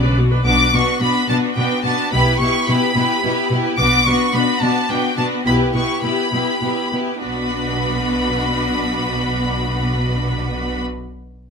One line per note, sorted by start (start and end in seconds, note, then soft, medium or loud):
0.00 0.23 B1 soft
0.00 0.18 C#3 soft
0.00 0.18 D4 soft
0.00 0.18 B4 soft
0.00 0.15 D5 medium
0.17 0.44 B2 soft
0.17 0.32 B3 soft
0.17 0.32 F#4 soft
0.32 0.44 D4 soft
0.32 0.46 B4 soft
0.45 0.72 B1 soft
0.45 0.53 B2 soft
0.45 0.73 B3 soft
0.45 0.73 D4 soft
0.45 0.73 F#4 soft
0.45 0.73 B4 soft
0.45 0.72 D6 medium
0.73 0.81 B2 soft
0.73 1.01 B3 soft
0.73 1.01 D4 soft
0.73 1.00 F#4 soft
0.73 1.01 B4 soft
0.73 1.02 C#6 medium
1.00 1.08 B2 soft
1.00 1.29 B3 soft
1.00 1.28 D4 soft
1.00 1.29 F#4 soft
1.00 1.29 B4 soft
1.00 1.29 B5 medium
1.28 1.37 B2 soft
1.28 1.56 B3 soft
1.28 1.56 D4 soft
1.28 1.56 F#4 soft
1.28 1.56 B4 soft
1.28 1.36 A5 medium
1.55 1.65 B2 soft
1.55 1.84 B3 soft
1.55 1.85 D4 soft
1.55 1.83 F#4 soft
1.55 1.83 B4 soft
1.55 1.84 G5 medium
1.84 1.92 B2 soft
1.84 2.12 B3 soft
1.84 2.13 D4 soft
1.84 2.12 F#4 soft
1.84 2.12 B4 soft
1.84 2.12 A5 medium
2.12 2.39 B1 soft
2.12 2.20 B2 soft
2.12 2.40 B3 soft
2.12 2.40 E4 soft
2.12 2.41 G4 soft
2.12 2.40 B4 soft
2.12 2.40 B5 medium
2.39 2.48 B2 soft
2.39 2.68 B3 soft
2.39 2.68 E4 soft
2.39 2.68 G4 soft
2.39 2.68 B4 soft
2.39 2.67 C#6 medium
2.67 2.76 B2 soft
2.67 2.95 B3 soft
2.67 2.95 E4 soft
2.67 2.96 G4 soft
2.67 2.96 B4 soft
2.67 3.50 B5 medium
2.96 3.04 B2 medium
2.96 3.23 B3 soft
2.96 3.23 E4 soft
2.96 3.24 G4 soft
2.96 3.24 B4 soft
3.24 3.32 B2 soft
3.24 3.51 B3 soft
3.24 3.50 E4 soft
3.24 3.51 G4 soft
3.24 3.51 B4 soft
3.51 3.59 B2 soft
3.51 3.79 B3 soft
3.51 3.78 E4 soft
3.51 3.79 G4 soft
3.51 3.79 B4 soft
3.78 4.05 B1 soft
3.78 3.87 B2 medium
3.78 4.06 B3 soft
3.78 4.05 D4 soft
3.78 4.07 F#4 soft
3.78 4.06 B4 soft
3.78 4.04 D6 medium
4.05 4.14 B2 soft
4.05 4.33 B3 soft
4.05 4.33 D4 soft
4.05 4.34 F#4 soft
4.05 4.34 B4 soft
4.05 4.34 C#6 medium
4.34 4.42 B2 soft
4.34 4.61 B3 soft
4.34 4.61 D4 soft
4.34 4.63 F#4 soft
4.34 4.63 B4 soft
4.34 4.62 B5 medium
4.62 4.70 B2 soft
4.62 4.88 B3 soft
4.62 4.88 D4 soft
4.62 4.90 F#4 soft
4.62 4.90 B4 soft
4.62 4.89 A5 medium
4.89 4.98 B2 soft
4.89 5.16 B3 soft
4.89 5.16 D4 soft
4.89 5.17 F#4 soft
4.89 5.17 B4 soft
4.89 5.18 G5 medium
5.17 5.26 B2 soft
5.17 5.44 B3 soft
5.17 5.45 D4 soft
5.17 5.45 F#4 soft
5.17 5.45 B4 soft
5.17 5.25 A5 medium
5.46 5.72 B1 soft
5.46 5.54 B2 soft
5.46 5.73 B3 soft
5.46 5.72 E4 soft
5.46 5.74 G4 soft
5.46 5.73 B4 soft
5.46 5.55 B5 medium
5.74 5.83 B2 soft
5.74 6.02 B3 soft
5.74 6.02 E4 soft
5.74 6.03 G4 soft
5.74 6.03 B4 soft
5.74 6.03 C#6 medium
6.03 6.11 B2 soft
6.03 6.30 B3 soft
6.03 6.31 E4 soft
6.03 6.32 G4 soft
6.03 6.33 B4 soft
6.03 6.91 B5 medium
6.32 6.41 B2 soft
6.32 6.60 B3 soft
6.32 6.60 E4 soft
6.32 6.61 G4 soft
6.32 6.62 B4 soft
6.61 6.70 B2 soft
6.61 6.91 B3 soft
6.61 6.91 E4 soft
6.61 6.92 G4 soft
6.61 6.92 B4 soft
6.92 7.01 B2 soft
6.92 7.22 B3 soft
6.92 7.23 E4 soft
6.92 7.24 G4 soft
6.92 7.23 B4 soft
7.23 10.80 B1 soft
7.23 10.79 B2 soft
7.23 10.79 B3 soft
7.23 10.79 D4 soft
7.23 10.80 F#4 soft
7.23 10.80 B4 soft
7.23 10.80 B5 soft